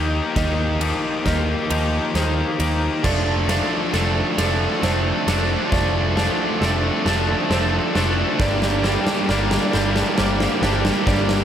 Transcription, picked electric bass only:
0.00 0.19 D#2 medium
0.36 0.92 D#2 medium
1.25 1.53 D#2 medium
1.70 1.98 D#2 medium
2.14 2.42 D#2 medium
2.59 2.87 D#2 medium
3.04 3.59 F1 medium
3.94 4.21 F1 medium
4.38 4.66 F1 medium
4.83 5.10 F1 medium
5.27 5.55 F1 medium
5.72 6.27 F1 medium
6.61 6.89 F1 medium
7.06 7.33 F1 medium
7.50 7.78 F1 medium
7.95 8.23 F1 medium
8.40 8.95 G1 medium
9.29 9.57 G1 medium
9.74 10.01 G1 medium
10.18 10.46 G1 loud
10.62 10.90 G1 loud
11.07 11.44 G1 medium

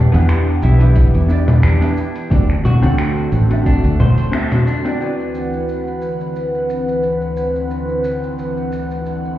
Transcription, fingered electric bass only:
0.14 0.58 E2 medium
0.63 1.10 B1 loud
1.15 1.60 E2 medium
1.64 1.79 E2 medium
2.31 2.78 D2 medium
2.83 3.28 D2 medium
3.32 3.79 A1 medium
3.85 4.29 D2 loud

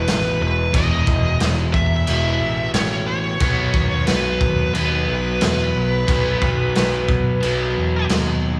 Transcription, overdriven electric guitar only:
0.00 0.71 E2 medium
0.00 0.72 B2 medium
0.00 0.73 E3 medium
0.00 0.27 B3 medium
0.72 2.04 E2 medium
0.72 2.05 B2 loud
0.72 2.06 E3 loud
2.07 3.38 E2 medium
2.07 3.39 B2 medium
2.07 3.40 E3 medium
3.40 4.74 B2 loud
3.40 4.76 F#3 loud
3.40 4.77 B3 loud
4.74 6.06 B2 medium
4.74 6.07 F#3 medium
4.74 6.09 B3 medium
6.07 7.39 B2 loud
6.07 7.40 F#3 loud
6.07 7.41 B3 loud
7.40 8.60 B2 medium
7.40 8.60 F#3 medium
7.40 8.60 B3 medium

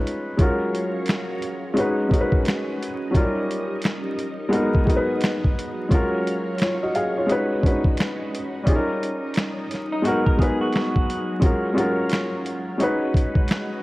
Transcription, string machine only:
0.40 1.76 F#3 medium
0.40 4.49 C#4 medium
0.40 1.76 A#4 medium
0.40 1.76 C#5 medium
0.40 1.76 F5 medium
1.77 3.14 G#3 medium
1.77 3.14 F#4 medium
1.77 3.14 B4 medium
1.77 5.87 D#5 medium
3.15 4.52 G3 medium
3.15 5.88 D#4 medium
3.15 4.52 A#4 medium
4.53 7.26 F#3 medium
4.53 5.90 B3 medium
4.53 5.89 G#4 medium
5.91 10.01 C#4 medium
5.91 7.28 A#4 medium
5.91 7.28 C#5 medium
5.91 7.28 F5 medium
7.28 8.65 G#3 medium
7.28 8.65 F#4 medium
7.28 8.65 B4 medium
7.28 11.39 D#5 medium
8.66 10.03 G3 medium
8.66 11.39 D#4 medium
8.66 10.03 A#4 medium
10.05 12.78 F#3 medium
10.05 11.41 B3 medium
10.05 11.41 G#4 medium
11.42 13.83 C#4 medium
11.42 12.79 A#4 medium
11.42 12.79 C#5 medium
11.42 12.79 F5 medium
12.80 13.83 G#3 medium
12.80 13.83 F#4 medium
12.80 13.83 B4 medium
12.80 13.83 D#5 medium

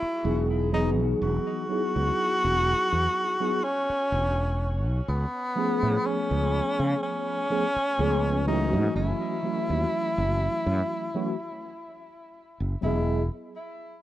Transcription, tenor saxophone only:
0.00 0.44 E4 loud
0.74 0.90 D#4 medium
1.22 3.65 F#4 loud
3.64 4.83 C#4 loud
5.09 6.07 B3 loud
6.06 7.02 C#4 loud
7.03 8.44 C#4 loud
8.48 8.93 D#4 medium
8.96 12.31 E4 loud
12.83 13.28 E4 medium

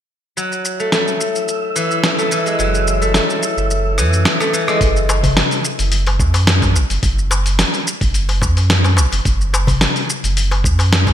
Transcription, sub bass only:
2.59 3.20 F#1 loud
3.57 4.00 F#1 loud
3.98 4.26 F#2 medium
4.81 5.42 F#1 medium
5.79 6.21 F#1 loud
6.20 6.77 F#2 medium
6.75 6.84 A1 loud
6.90 6.98 F#1 medium
7.03 7.64 F#1 medium
8.01 8.43 F#1 loud
8.42 8.99 F#2 medium
8.98 9.07 A1 loud
9.12 9.20 F#1 medium
9.25 9.87 F#1 loud
10.24 10.66 F#1 medium
10.64 11.13 F#2 medium

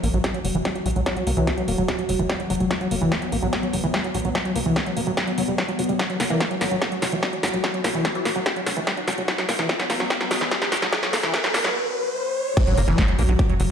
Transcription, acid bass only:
0.04 0.08 A#3 medium
0.14 0.18 F#3 loud
0.24 0.27 G4 medium
0.34 0.39 F#3 medium
0.45 0.47 F#3 medium
0.55 0.58 E3 loud
0.65 0.70 G3 loud
0.75 0.78 F#3 medium
0.86 0.89 F#3 loud
0.96 1.01 F#3 medium
1.06 1.09 F#3 loud
1.17 1.24 F#3 medium
1.27 1.31 A#3 medium
1.37 1.49 E3 loud
1.47 1.52 C#4 loud
1.58 1.62 F#3 medium
1.68 1.73 A#3 medium
1.78 1.83 F#3 loud
1.88 1.91 G4 medium
1.99 2.03 F#3 medium
2.09 2.12 F#3 medium
2.19 2.22 E3 loud
2.30 2.34 G3 loud
2.40 2.43 F#3 medium
2.50 2.53 F#3 loud
2.60 2.65 F#3 medium
2.71 2.73 F#3 loud
2.81 2.88 F#3 medium
2.91 2.96 A#3 medium
3.01 3.13 E3 loud
3.12 3.16 C#4 loud
3.22 3.27 F#3 medium
3.32 3.37 A#3 medium
3.43 3.47 F#3 loud
3.53 3.56 G4 medium
3.63 3.68 F#3 medium
3.73 3.76 F#3 medium
3.84 3.86 E3 loud
3.94 3.99 G3 loud
4.04 4.07 F#3 medium
4.15 4.17 F#3 loud
4.25 4.29 F#3 medium
4.35 4.38 F#3 loud
4.45 4.52 F#3 medium
4.56 4.60 A#3 medium
4.66 4.78 E3 loud
4.76 4.81 C#4 loud
4.86 4.91 F#3 medium
4.97 5.01 A#3 medium
5.07 5.12 F#3 loud
5.17 5.20 G4 medium
5.28 5.32 F#3 medium
5.38 5.42 F#3 loud
5.48 5.55 G3 medium
5.58 5.63 F#3 medium
5.69 5.71 F#3 loud
5.79 5.82 F#4 medium
5.89 5.94 G3 medium
5.99 6.02 F#3 loud
6.10 6.17 F#3 medium
6.20 6.25 A#3 medium
6.30 6.42 E3 loud
6.41 6.45 C#4 loud
6.51 6.55 F#3 medium
6.61 6.66 A#3 medium
6.71 6.76 F#3 loud
6.82 6.84 G4 medium
6.92 6.97 F#3 medium
7.02 7.05 F#3 medium
7.12 7.15 E3 loud
7.23 7.27 G3 loud
7.33 7.36 F#3 medium
7.43 7.46 F#3 loud
7.54 7.58 F#3 medium
7.64 7.67 F#3 loud
7.74 7.81 F#3 medium
7.84 7.89 A#3 medium
7.95 8.06 E3 loud
8.05 8.10 C#4 loud
8.15 8.20 F#3 medium
8.25 8.30 A#3 medium
8.36 8.40 F#3 loud
8.46 8.49 G4 medium
8.56 8.61 F#3 medium
8.67 8.69 F#3 medium
8.77 8.80 E3 loud
8.87 8.92 G3 loud
8.97 9.00 F#3 medium
9.08 9.10 F#3 loud
9.18 9.23 F#3 medium
9.28 9.31 F#3 loud
9.38 9.45 F#3 medium
9.49 9.53 A#3 medium
9.59 9.71 E3 loud
9.69 9.74 C#4 loud
9.80 9.84 F#3 medium
9.90 9.94 A#3 medium
10.00 10.05 F#3 loud
10.10 10.13 G4 medium
10.21 10.25 F#3 medium
10.31 10.34 F#3 medium
10.41 10.44 E3 loud
10.51 10.56 G3 loud
10.62 10.65 F#3 medium
10.72 10.75 F#3 loud
10.82 10.87 F#3 medium
10.93 10.95 F#3 loud
11.03 11.10 F#3 medium
11.13 11.18 A#3 medium
11.23 11.35 E3 loud
11.34 11.38 C#4 loud
11.44 11.49 F#3 medium
11.54 11.59 A#3 medium
11.64 11.69 F#3 loud
12.57 12.60 F#3 loud
12.67 12.74 F#3 medium
12.78 12.82 A#3 medium
12.88 13.00 E3 loud
12.98 13.03 C#4 loud
13.08 13.13 F#3 medium
13.19 13.23 A#3 medium
13.29 13.34 F#3 loud
13.39 13.42 G4 medium
13.49 13.54 F#3 medium
13.60 13.62 F#3 medium

